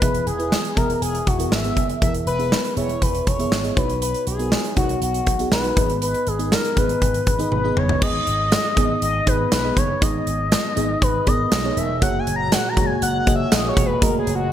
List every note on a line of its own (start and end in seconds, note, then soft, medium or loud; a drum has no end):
0.01 0.20 E1 medium
0.01 0.73 E3 medium
0.01 0.31 B3 medium
0.01 0.31 E4 medium
0.01 0.31 G#4 medium
0.01 0.25 B4 medium
0.01 0.31 E5 medium
0.01 kick loud
0.01 closed hi-hat medium
0.15 closed hi-hat soft
0.27 0.54 E1 medium
0.27 0.78 G#4 medium
0.27 closed hi-hat medium
0.39 0.68 B3 medium
0.39 0.68 E4 medium
0.39 0.69 G#4 medium
0.39 0.69 B4 medium
0.39 closed hi-hat soft
0.52 snare loud
0.65 closed hi-hat soft
0.76 0.95 E1 medium
0.76 1.25 B3 medium
0.76 1.25 E4 medium
0.76 1.25 G#4 medium
0.76 1.02 A#4 medium
0.76 1.26 E5 medium
0.76 kick medium
0.76 closed hi-hat medium
0.90 closed hi-hat soft
1.02 1.20 E1 medium
1.02 1.29 G#4 medium
1.02 closed hi-hat medium
1.15 closed hi-hat soft
1.27 1.45 E1 medium
1.27 1.53 F#4 medium
1.27 kick medium
1.27 closed hi-hat medium
1.39 1.58 B3 medium
1.39 1.59 E4 medium
1.39 1.59 G#4 medium
1.39 1.59 A#4 medium
1.39 closed hi-hat medium
1.52 1.70 G#1 medium
1.52 2.02 E5 loud
1.52 snare loud
1.64 1.93 B3 medium
1.64 1.93 E4 medium
1.64 1.94 G#4 medium
1.64 1.94 E5 medium
1.64 closed hi-hat soft
1.77 1.95 F#1 medium
1.77 kick medium
1.77 closed hi-hat medium
1.89 closed hi-hat soft
2.01 2.20 E1 medium
2.01 2.73 E3 medium
2.01 2.31 B3 medium
2.01 2.31 E4 medium
2.01 2.31 G#4 medium
2.01 2.31 A#4 medium
2.01 2.13 E5 medium
2.01 kick loud
2.01 closed hi-hat medium
2.14 closed hi-hat soft
2.26 2.54 E1 medium
2.26 2.74 B4 loud
2.26 closed hi-hat medium
2.39 2.68 B3 medium
2.39 2.69 E4 medium
2.39 2.69 G#4 medium
2.39 2.69 E5 medium
2.39 closed hi-hat soft
2.52 snare loud
2.65 closed hi-hat soft
2.76 2.95 E1 medium
2.76 3.25 B3 medium
2.76 3.25 E4 medium
2.76 3.26 G#4 medium
2.76 3.04 C#5 medium
2.76 3.26 E5 medium
2.76 closed hi-hat medium
2.89 closed hi-hat soft
3.02 3.20 E1 medium
3.02 3.29 B4 medium
3.02 kick medium
3.02 closed hi-hat medium
3.15 closed hi-hat soft
3.27 3.45 E1 medium
3.27 3.79 C#5 loud
3.27 kick medium
3.27 closed hi-hat medium
3.39 3.59 B3 medium
3.39 3.59 E4 medium
3.39 3.59 G#4 medium
3.39 3.59 E5 medium
3.39 closed hi-hat medium
3.52 3.70 G#1 medium
3.52 snare medium
3.64 3.75 B3 medium
3.64 3.77 E4 medium
3.64 3.77 G#4 medium
3.64 3.77 D#5 medium
3.64 closed hi-hat soft
3.76 4.13 B1 medium
3.76 4.48 B2 medium
3.76 4.26 B3 medium
3.76 4.27 D#4 medium
3.76 4.27 F#4 medium
3.76 4.02 B4 medium
3.76 4.27 C#5 medium
3.76 kick loud
3.76 closed hi-hat medium
3.90 closed hi-hat soft
4.02 4.25 B4 medium
4.02 closed hi-hat medium
4.14 closed hi-hat soft
4.27 4.54 B1 medium
4.27 4.74 G#4 medium
4.27 closed hi-hat medium
4.39 4.68 B3 medium
4.39 4.68 D#4 medium
4.39 4.69 F#4 medium
4.39 4.69 A#4 medium
4.39 closed hi-hat soft
4.52 snare loud
4.64 closed hi-hat soft
4.76 4.95 B1 medium
4.76 5.25 B3 medium
4.76 5.25 D#4 medium
4.76 5.26 F#4 medium
4.76 5.00 F#4 medium
4.76 5.26 C#5 medium
4.76 kick medium
4.76 closed hi-hat medium
4.89 closed hi-hat soft
5.02 5.20 B1 medium
5.02 5.49 F#4 medium
5.02 closed hi-hat medium
5.14 closed hi-hat soft
5.27 5.45 B1 medium
5.27 kick medium
5.27 closed hi-hat medium
5.39 5.59 B3 medium
5.39 5.59 D#4 medium
5.39 5.59 F#4 medium
5.39 5.59 G#4 medium
5.39 closed hi-hat medium
5.52 5.70 B1 medium
5.52 5.99 B4 medium
5.52 snare medium
5.64 5.75 B3 medium
5.64 5.75 D#4 medium
5.64 5.77 F#4 medium
5.64 5.77 B4 medium
5.64 closed hi-hat soft
5.76 6.13 G#1 medium
5.76 6.48 G#2 medium
5.76 6.27 B3 medium
5.76 6.27 D#4 medium
5.76 6.27 G#4 medium
5.76 6.27 D#5 medium
5.76 kick loud
5.76 closed hi-hat medium
5.89 closed hi-hat soft
6.02 6.29 B4 medium
6.02 closed hi-hat medium
6.14 closed hi-hat soft
6.27 6.54 G#1 medium
6.27 6.54 G#4 medium
6.27 closed hi-hat medium
6.39 6.68 B3 medium
6.39 6.68 D#4 medium
6.39 6.69 G#4 medium
6.39 6.69 D#5 medium
6.39 closed hi-hat soft
6.52 6.79 A#4 medium
6.52 snare loud
6.64 closed hi-hat soft
6.76 6.95 G#1 medium
6.76 7.25 B3 medium
6.76 7.25 D#4 medium
6.76 7.25 G#4 medium
6.76 7.26 B4 medium
6.76 7.52 B4 medium
6.76 kick medium
6.76 closed hi-hat medium
6.89 closed hi-hat soft
7.02 7.20 G#1 loud
7.02 kick medium
7.02 closed hi-hat medium
7.14 closed hi-hat soft
7.27 7.45 G#1 medium
7.27 kick medium
7.27 closed hi-hat medium
7.39 7.58 B3 medium
7.39 7.59 D#4 medium
7.39 7.59 G#4 medium
7.39 7.59 D#5 medium
7.39 closed hi-hat medium
7.52 7.70 G#1 medium
7.52 7.79 B4 medium
7.52 high tom soft
7.64 7.93 B3 medium
7.64 7.94 D#4 medium
7.64 7.94 G#4 medium
7.64 7.94 D#5 medium
7.77 7.95 F#1 medium
7.77 8.04 C#5 medium
7.77 mid tom medium
7.89 floor tom medium
8.01 8.20 G#1 medium
8.01 8.73 G#2 medium
8.01 8.60 B3 medium
8.01 8.60 D#4 medium
8.01 8.60 G#4 medium
8.01 9.02 D#5 medium
8.01 8.60 D#5 medium
8.01 kick loud
8.01 crash medium
8.27 8.54 G#1 medium
8.27 closed hi-hat medium
8.52 snare loud
8.52 closed hi-hat medium
8.76 8.95 G#1 medium
8.76 9.15 B3 medium
8.76 9.16 D#4 medium
8.76 9.16 G#4 medium
8.76 9.16 D#5 medium
8.76 kick medium
8.76 closed hi-hat medium
9.02 9.20 G#1 loud
9.02 9.29 D#5 loud
9.02 closed hi-hat medium
9.26 9.45 G#1 medium
9.26 9.56 B3 medium
9.26 9.56 D#4 medium
9.26 9.56 G#4 medium
9.26 9.52 B4 medium
9.26 9.56 D#5 medium
9.26 kick medium
9.26 closed hi-hat medium
9.52 9.70 B1 medium
9.52 9.79 B4 medium
9.52 snare loud
9.52 closed hi-hat medium
9.64 9.93 B3 medium
9.64 9.93 D#4 medium
9.64 9.93 G#4 medium
9.64 9.94 D#5 medium
9.77 9.95 F#1 medium
9.77 10.04 C#5 medium
9.77 kick medium
9.77 closed hi-hat medium
10.01 10.20 G#1 loud
10.01 10.73 G#2 medium
10.01 10.60 B3 medium
10.01 10.60 D#4 medium
10.01 10.60 G#4 medium
10.01 11.04 D#5 medium
10.01 10.60 D#5 medium
10.01 kick loud
10.01 closed hi-hat medium
10.27 10.54 G#1 medium
10.27 closed hi-hat medium
10.52 snare loud
10.52 closed hi-hat medium
10.76 10.95 G#1 medium
10.76 11.15 B3 medium
10.76 11.16 D#4 medium
10.76 11.16 G#4 medium
10.76 11.16 D#5 loud
10.76 closed hi-hat medium
11.02 11.20 G#1 loud
11.02 11.29 B4 loud
11.02 kick medium
11.02 closed hi-hat medium
11.26 11.45 G#1 medium
11.26 11.56 B3 medium
11.26 11.56 D#4 medium
11.26 11.56 G#4 medium
11.26 11.56 A#4 medium
11.26 11.52 D#5 loud
11.26 kick medium
11.26 closed hi-hat medium
11.52 11.70 B1 medium
11.52 11.79 D#5 loud
11.52 snare loud
11.52 closed hi-hat medium
11.64 11.93 B3 medium
11.64 11.93 D#4 medium
11.64 11.94 G#4 medium
11.64 11.94 C#5 medium
11.77 12.02 E1 medium
11.77 12.02 E5 loud
11.77 closed hi-hat medium
12.01 12.20 F#1 loud
12.01 14.53 A#2 medium
12.01 14.53 G#3 medium
12.01 12.60 A#3 medium
12.01 12.60 F#4 medium
12.01 14.00 F#4 medium
12.01 12.60 G#4 medium
12.01 12.60 C#5 medium
12.01 12.21 F#5 loud
12.01 kick loud
12.01 closed hi-hat medium
12.19 12.36 G#5 loud
12.27 12.54 F#1 medium
12.27 closed hi-hat medium
12.36 12.54 A#5 loud
12.52 12.70 F#5 loud
12.52 snare loud
12.52 closed hi-hat medium
12.69 12.87 A#5 loud
12.77 12.95 F#1 medium
12.77 13.16 A#3 medium
12.77 13.16 F#4 medium
12.77 13.16 G#4 medium
12.77 13.16 C#5 medium
12.77 kick medium
12.77 closed hi-hat medium
12.86 13.02 G#5 loud
13.02 13.20 F#1 loud
13.02 13.18 F#5 loud
13.02 closed hi-hat medium
13.19 13.34 F#5 loud
13.26 13.45 F#1 loud
13.26 13.56 A#3 medium
13.26 13.56 F#4 medium
13.26 13.56 G#4 medium
13.26 13.56 D#5 medium
13.26 kick medium
13.26 closed hi-hat medium
13.36 13.54 E5 loud
13.52 13.70 A#1 medium
13.52 13.68 D#5 loud
13.52 snare loud
13.52 closed hi-hat medium
13.64 13.93 A#3 medium
13.64 13.94 F#4 medium
13.64 13.94 G#4 medium
13.64 13.94 C#5 medium
13.69 13.87 C#5 medium
13.77 13.95 E1 medium
13.77 kick medium
13.77 closed hi-hat medium
13.86 14.04 B4 medium
14.02 14.20 F#1 loud
14.02 14.08 A3 medium
14.02 14.53 F#4 medium
14.02 14.53 G#4 medium
14.02 14.18 A#4 medium
14.02 14.53 D#5 medium
14.02 kick loud
14.02 closed hi-hat medium
14.08 14.53 A#3 medium
14.19 14.34 G#4 medium
14.27 14.53 F#1 medium
14.27 closed hi-hat medium
14.36 14.53 F#4 medium